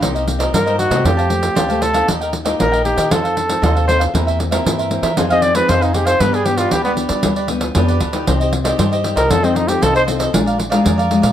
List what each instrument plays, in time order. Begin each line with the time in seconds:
0.01 upright bass C2, nylon-string guitar C3 A#3 D#4 G4, cavaquinho D#4 A#4 C5 D#5, pandeiro
0.15 cavaquinho A#4 C5 D#5, pandeiro
0.27 nylon-string guitar A#3 D#4 G4, muted cavaquinho stroke, pandeiro
0.39 cavaquinho A#4 C5 D#5, pandeiro
0.53 upright bass G2, nylon-string guitar G2, cavaquinho D#4 A#4 C5 D#5, trumpet A#4, pandeiro
0.66 nylon-string guitar A#3 D#4 G4, cavaquinho A#4 C5 D#5, pandeiro
0.78 trumpet F#4, pandeiro
0.90 upright bass C3, nylon-string guitar A3 C4 G4, cavaquinho A#4 C5 D#5, pandeiro
1.04 upright bass F2, nylon-string guitar F3, cavaquinho G4 C5 F5 A5, trumpet G4, pandeiro
1.17 cavaquinho C5 F5 A5, pandeiro
1.29 nylon-string guitar A3 C4 G4, muted cavaquinho stroke, pandeiro
1.43 pandeiro
1.55 upright bass D2, nylon-string guitar C3, cavaquinho G4 C5 F5 A5, pandeiro
1.69 nylon-string guitar A3 C4 G4, cavaquinho C5 F5 A5, pandeiro
1.81 cavaquinho G4 C5 F5 A5, trumpet A4, pandeiro
1.93 nylon-string guitar A#3 D#4 G4, cavaquinho C5 F5 A5, pandeiro
2.08 upright bass D#2, nylon-string guitar D#3, cavaquinho G4 A#4 D#5 G5, pandeiro
2.21 cavaquinho A#4 D#5 G5, pandeiro
2.33 muted cavaquinho stroke, pandeiro
2.45 nylon-string guitar A#3 D#4 G4, cavaquinho A#4 D#5 G5, pandeiro
2.59 upright bass A#1, nylon-string guitar A#2, cavaquinho G4 A#4 D#5 G5, trumpet A#4, pandeiro
2.72 cavaquinho A#4 D#5 G5, pandeiro
2.85 nylon-string guitar A#3 D#4 G4, trumpet G4, pandeiro
2.96 upright bass D#3, cavaquinho A#4 D#5 G5, pandeiro
3.10 upright bass F2, nylon-string guitar F3 C4 D#4 A4, cavaquinho D#4 A4 C5 F5, trumpet A4, pandeiro
3.24 cavaquinho A4 C5 F5, pandeiro
3.36 muted cavaquinho stroke, pandeiro
3.49 nylon-string guitar C4 D#4 A4, pandeiro
3.62 upright bass D#2, nylon-string guitar C3, cavaquinho D#4 A4 C5 F5, pandeiro
3.76 cavaquinho A4 C5 F5, pandeiro
3.87 nylon-string guitar C4 D#4 A4, cavaquinho D#4 A4 C5 F5, trumpet C5, pandeiro
3.99 cavaquinho A4 C5 F5, pandeiro
4.14 upright bass E2, nylon-string guitar E3 A#3 C4 G4, cavaquinho E4 A#4 C5 E5, pandeiro
4.27 cavaquinho A#4 C5 E5, pandeiro
4.39 muted cavaquinho stroke, pandeiro
4.51 nylon-string guitar A#3 C4 G4, cavaquinho A#4 C5 E5, pandeiro
4.65 upright bass G2, nylon-string guitar E3, cavaquinho E4 A#4 C5 E5, pandeiro
4.78 cavaquinho A#4 C5 E5, pandeiro
4.91 nylon-string guitar A#3 C4 G4, pandeiro
5.03 upright bass E3, cavaquinho A#4 C5 E5, pandeiro
5.17 upright bass F2, nylon-string guitar F3 C4 D#4 G#4, cavaquinho D#4 G#4 C5 F5, pandeiro
5.30 nylon-string guitar C4 D#4 G#4, cavaquinho G#4 C5 F5, trumpet D#5, pandeiro
5.42 trumpet D5, muted cavaquinho stroke, pandeiro
5.55 nylon-string guitar C4 D#4 G#4, trumpet B4, pandeiro
5.68 upright bass F2, nylon-string guitar C3, cavaquinho D#4 G#4 C5 F5, trumpet C5, pandeiro
5.81 trumpet D#4, cavaquinho G#4 C5 F5, pandeiro
5.93 nylon-string guitar C4 D#4 G#4, cavaquinho D#4 G#4 C5 F5, trumpet G4, pandeiro
6.05 cavaquinho G#4 C5 F5, trumpet C5, pandeiro
6.19 upright bass G2, nylon-string guitar G3 B3 D4 G4, cavaquinho D4 G4 B4 D5, trumpet B4, pandeiro
6.33 cavaquinho G4 B4 D5, trumpet G#4, pandeiro
6.45 nylon-string guitar B3 D4 G4, trumpet G4, muted cavaquinho stroke, pandeiro
6.57 trumpet F4, cavaquinho G4 B4 D5, pandeiro
6.71 upright bass D2, nylon-string guitar D3, cavaquinho D4 G4 B4 D5, trumpet G4, pandeiro
6.84 trumpet B3, nylon-string guitar B3 D4 G4, cavaquinho G4 B4 D5, pandeiro
6.97 pandeiro
7.09 upright bass G3, cavaquinho G4 B4 D5, pandeiro
7.23 upright bass D2, nylon-string guitar G3, cavaquinho D4 G4 B4 D5, pandeiro
7.36 cavaquinho G4 B4 D5, pandeiro
7.48 nylon-string guitar B3 D4 G4, muted cavaquinho stroke, pandeiro
7.61 pandeiro
7.75 upright bass F2, nylon-string guitar D3 B3 D4 G4, cavaquinho D4 G4 B4 D5, pandeiro
7.88 cavaquinho G4 B4 D5, pandeiro
8.00 upright bass D2, cavaquinho D4 G4 B4 D5, pandeiro
8.13 nylon-string guitar D#4 G4 D5, cavaquinho G4 B4 D5, pandeiro
8.27 upright bass C2, nylon-string guitar C4, cavaquinho D4 G4 C5 D#5, pandeiro
8.40 cavaquinho G4 C5 D#5, pandeiro
8.52 muted cavaquinho stroke, pandeiro
8.64 nylon-string guitar D#4 G4 D5, cavaquinho G4 C5 D#5, pandeiro
8.78 upright bass G2, nylon-string guitar G3, cavaquinho D4 G4 C5 D#5, pandeiro
8.92 cavaquinho G4 C5 D#5, pandeiro
9.04 nylon-string guitar D#4 G4 D5, pandeiro
9.16 upright bass C2, cavaquinho G4 C5 D#5, trumpet A#4, pandeiro
9.30 upright bass F2, nylon-string guitar F3 C4 D#4 A4, cavaquinho F4 A4 C5 D#5, trumpet A4, pandeiro
9.43 nylon-string guitar C4 D#4 A4, trumpet C4, cavaquinho A4 C5 D#5, pandeiro
9.55 trumpet D#4, muted cavaquinho stroke, pandeiro
9.68 nylon-string guitar C4 D#4 A4, trumpet G4, pandeiro
9.81 upright bass C2, nylon-string guitar C3, cavaquinho F4 A4 C5 D#5, trumpet A4, pandeiro
9.95 cavaquinho A4 C5 D#5, trumpet C5, pandeiro
10.06 nylon-string guitar C4 D#4 A4, cavaquinho F4 A4 C5 D#5, pandeiro
10.19 cavaquinho A4 C5 D#5, pandeiro
10.33 upright bass A#1, nylon-string guitar A#2 G#3 D4 F4, cavaquinho G#4 A#4 D5 F5, pandeiro
10.46 cavaquinho A#4 D5 F5, pandeiro
10.58 muted cavaquinho stroke, pandeiro
10.70 nylon-string guitar G#3 D4 F4, cavaquinho A#4 D5 F5, pandeiro
10.84 upright bass F2, nylon-string guitar F3, cavaquinho G#4 A#4 D5 F5, pandeiro
10.98 cavaquinho A#4 D5 F5, pandeiro
11.11 nylon-string guitar G#3 D4 F4, pandeiro
11.22 upright bass A#2, cavaquinho A#4 D5 F5, pandeiro